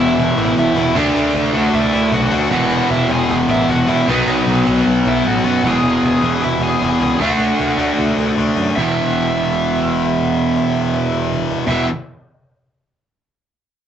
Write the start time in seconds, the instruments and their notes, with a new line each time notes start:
Already playing: distorted electric guitar E2 B2 E3
0.00 picked electric bass E1, distorted electric guitar E2 B2, lead electric guitar E4 E5
0.18 picked electric bass E1, cajon bass
0.36 picked electric bass A1, cajon slap
0.57 picked electric bass E1, lead electric guitar E4 E5, cajon bass
0.75 picked electric bass E1, distorted electric guitar B2 E3, cajon slap
0.79 distorted electric guitar E2
0.94 picked electric bass D2, distorted electric guitar D3 A3 D4, lead electric guitar D4 D5, cajon bass
1.15 picked electric bass D2, cajon slap
1.34 picked electric bass D2, cajon bass
1.53 picked electric bass D2, distorted electric guitar D3 A3 D4, lead electric guitar F#4 F#5, cajon slap
1.73 picked electric bass D2, lead electric guitar E4 E5, cajon bass
1.93 picked electric bass D2, lead electric guitar E4 E5, cajon slap
2.12 picked electric bass B1, lead electric guitar F#4 F#5, cajon bass
2.30 picked electric bass D2, distorted electric guitar D3 A3 D4, cajon slap
2.50 picked electric bass E1, distorted electric guitar E2 B2 E3, lead electric guitar F#4 F#5, cajon bass
2.70 cajon slap
2.90 picked electric bass E1, lead electric guitar E4 E5, cajon bass
3.10 picked electric bass E1, distorted electric guitar E2 B2 E3, lead electric guitar G#4 G#5, cajon slap
3.29 picked electric bass E1, lead electric guitar G#4 G#5, cajon bass
3.47 picked electric bass A1, lead electric guitar E4 E5, cajon slap
3.68 picked electric bass E1, lead electric guitar F#4 F#5, cajon bass
3.88 picked electric bass E1, distorted electric guitar E2 B2 E3, lead electric guitar E4 E5, cajon slap
4.07 picked electric bass B1, distorted electric guitar B2 F#3 B3, lead electric guitar D#4 D#5, cajon bass
4.26 picked electric bass B1, cajon slap
4.47 picked electric bass B1, cajon bass
4.65 picked electric bass B1, distorted electric guitar B2 F#3 B3, cajon slap
4.86 picked electric bass B1
5.05 picked electric bass B1, lead electric guitar E4 E5
5.25 picked electric bass A1, lead electric guitar F#4 F#5
5.44 picked electric bass F#2, distorted electric guitar B2 F#3 B3
5.63 picked electric bass E1, distorted electric guitar E2 B2 E3, cajon bass
5.68 lead electric guitar G#4 G#5
5.82 picked electric bass E1, cajon slap
6.03 picked electric bass E1, lead electric guitar G#4 G#5, cajon bass
6.22 picked electric bass E1, distorted electric guitar E2 B2 E3, cajon slap
6.42 picked electric bass E1, lead electric guitar E4 E5, cajon bass
6.59 picked electric bass E1, lead electric guitar G#4 G#5, cajon slap
6.80 picked electric bass E1, distorted electric guitar E2 B2 E3, cajon bass
7.00 picked electric bass C#2, lead electric guitar G#4 G#5, cajon slap
7.19 picked electric bass D2, distorted electric guitar D3 A3 D4, lead electric guitar F#4 F#5, cajon bass
7.39 picked electric bass D2, cajon slap
7.59 picked electric bass D2, cajon bass
7.77 picked electric bass D2, distorted electric guitar D3 A3 D4, cajon slap
7.99 picked electric bass D2, cajon bass
8.17 picked electric bass D2, cajon slap
8.36 picked electric bass D2, distorted electric guitar D3 A3 D4, cajon bass
8.57 picked electric bass F#2, cajon slap
8.76 picked electric bass E1, distorted electric guitar E2 B2 E3, lead electric guitar E5, cajon bass
8.97 cajon bass
9.36 cajon bass
9.76 cajon bass
10.15 cajon bass
10.56 cajon slap
10.74 cajon slap
10.94 cajon slap
11.12 cajon slap
11.32 cajon bass
11.51 cajon bass
11.67 picked electric bass E1, distorted electric guitar E2 B2, lead electric guitar E5, cajon bass, cajon slap
11.71 distorted electric guitar E3